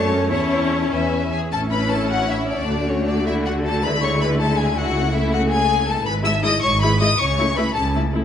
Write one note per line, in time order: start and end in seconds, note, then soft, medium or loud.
0.00 0.31 F#2 medium
0.00 0.31 A3 medium
0.00 0.10 D4 medium
0.00 0.30 C#5 medium
0.00 0.30 A5 medium
0.10 0.30 C#4 medium
0.30 0.91 E2 medium
0.30 1.21 C#4 medium
0.30 0.91 E4 medium
0.30 0.91 C#5 soft
0.30 0.91 A5 soft
0.91 1.32 E2 soft
0.91 1.32 B4 soft
0.91 1.32 E5 soft
0.91 1.31 G#5 soft
1.32 1.51 G#4 soft
1.32 1.40 G#5 medium
1.52 2.64 A1 soft
1.52 2.64 A2 medium
1.52 2.65 C#4 medium
1.52 2.65 E4 medium
1.52 1.60 A4 medium
1.52 1.60 A5 medium
1.72 1.91 B4 medium
1.72 1.91 B5 medium
1.91 2.11 A4 medium
1.91 2.10 A5 medium
2.10 2.30 F#4 medium
2.10 2.29 F#5 medium
2.30 2.49 E4 soft
2.30 2.49 E5 medium
2.49 2.87 D4 medium
2.49 2.87 D5 medium
2.68 4.96 D2 soft
2.68 4.96 D3 medium
2.68 3.79 A3 soft
2.68 3.79 F#4 medium
2.88 3.07 C#4 soft
2.88 3.07 C#5 medium
3.07 3.26 D4 soft
3.07 3.26 D5 medium
3.26 3.45 E4 soft
3.26 3.34 E5 medium
3.45 3.64 F#4 soft
3.45 3.53 F#5 medium
3.64 3.82 A4 medium
3.64 3.84 A5 medium
3.82 4.92 G#3 soft
3.82 6.03 E4 medium
3.82 3.90 B4 medium
3.82 4.02 B5 medium
4.01 4.20 C#5 medium
4.01 4.21 C#6 medium
4.21 4.39 B4 medium
4.21 4.29 B5 medium
4.40 4.58 A4 medium
4.40 4.59 A5 medium
4.58 4.77 G#4 medium
4.58 4.77 G#5 medium
4.78 5.14 F#4 medium
4.78 5.15 F#5 medium
4.95 6.05 C#2 soft
4.95 6.05 C#3 medium
4.95 6.03 A3 medium
5.15 5.33 E4 medium
5.15 5.34 E5 medium
5.33 5.52 F#4 medium
5.33 5.41 F#5 medium
5.51 5.88 G#4 medium
5.51 5.88 G#5 medium
5.88 6.07 A4 medium
5.88 6.07 A5 medium
6.06 6.54 G#1 medium
6.06 6.54 G#2 medium
6.06 6.25 B4 medium
6.06 6.14 B5 medium
6.25 6.31 G#3 soft
6.25 6.32 E4 soft
6.25 6.44 E5 medium
6.25 6.33 E6 medium
6.43 6.50 G#3 medium
6.43 6.50 E4 medium
6.43 6.63 D#5 medium
6.43 6.62 D#6 medium
6.62 7.10 G#1 medium
6.62 7.10 G#2 medium
6.62 6.71 C#5 medium
6.62 6.81 C#6 medium
6.81 6.89 G#3 soft
6.81 6.88 E4 soft
6.81 7.00 B4 medium
6.81 7.00 B5 medium
7.00 7.07 G#3 soft
7.00 7.07 E4 soft
7.00 7.08 D#5 medium
7.00 7.19 D#6 medium
7.19 7.66 C#2 soft
7.19 7.66 C#3 medium
7.19 7.56 C#5 medium
7.19 7.56 C#6 medium
7.38 7.44 A3 soft
7.38 7.45 E4 soft
7.56 7.64 A3 soft
7.56 7.64 E4 soft
7.56 7.63 B4 medium
7.56 7.76 B5 medium
7.74 8.23 C#2 medium
7.74 8.24 C#3 medium
7.74 7.82 A4 soft
7.74 7.94 A5 medium
7.95 8.01 A3 soft
7.95 8.01 E4 soft
8.14 8.20 A3 soft
8.14 8.21 E4 soft